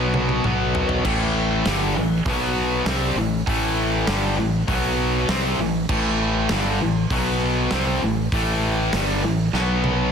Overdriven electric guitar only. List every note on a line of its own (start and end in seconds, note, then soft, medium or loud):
0.00 0.44 B2 medium
0.00 0.44 F#3 medium
0.00 0.44 B3 loud
0.45 1.04 B2 medium
0.45 1.04 F#3 loud
0.45 1.05 B3 medium
1.05 1.64 A2 loud
1.05 1.64 E3 loud
1.05 1.65 A3 loud
1.66 1.95 G2 medium
1.66 1.95 D3 medium
1.66 1.95 G3 loud
1.98 2.21 A2 medium
1.98 2.21 E3 medium
2.28 2.86 B2 medium
2.28 2.87 F#3 medium
2.28 2.87 B3 medium
2.88 3.17 C3 medium
2.88 3.17 G3 medium
2.88 3.17 C4 loud
3.18 3.41 A2 medium
3.18 3.42 E3 medium
3.48 4.07 A2 medium
3.48 4.08 E3 loud
3.48 4.08 A3 loud
4.08 4.37 G2 medium
4.08 4.37 D3 medium
4.08 4.37 G3 medium
4.39 4.63 A2 medium
4.39 4.63 E3 medium
4.68 5.28 B2 medium
4.68 5.28 F#3 medium
4.68 5.28 B3 loud
5.30 5.59 C3 medium
5.30 5.59 G3 medium
5.30 5.59 C4 loud
5.60 5.84 A2 medium
5.60 5.84 E3 medium
5.90 6.49 A2 loud
5.90 6.49 E3 loud
5.90 6.49 A3 loud
6.51 6.80 G2 medium
6.51 6.80 D3 loud
6.51 6.80 G3 medium
6.81 7.05 A2 medium
6.81 7.05 E3 medium
7.11 7.71 B2 medium
7.11 7.71 F#3 loud
7.11 7.71 B3 loud
7.72 8.01 C3 medium
7.72 8.01 G3 loud
7.72 8.01 C4 loud
8.03 8.27 A2 medium
8.03 8.27 E3 medium
8.34 8.93 A2 medium
8.34 8.93 E3 loud
8.34 8.93 A3 loud
8.95 9.23 G2 medium
8.95 9.23 D3 medium
8.95 9.24 G3 loud
9.24 9.48 A2 medium
9.24 9.48 E3 medium
9.55 10.12 B2 medium
9.55 10.12 F#3 medium
9.55 10.12 B3 loud